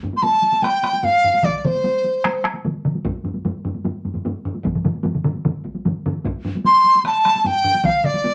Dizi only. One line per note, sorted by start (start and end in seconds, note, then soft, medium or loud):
0.17 0.24 C6 medium
0.23 0.64 A5 medium
0.62 1.06 G5 medium
1.04 1.46 F5 medium
1.45 1.58 D5 medium
1.58 1.67 D5 soft
1.65 2.45 C5 medium
6.66 7.03 C6 medium
7.06 7.40 A5 loud
7.40 7.48 A5 medium
7.47 7.87 G5 loud
7.85 8.06 F5 medium
8.05 8.34 D5 medium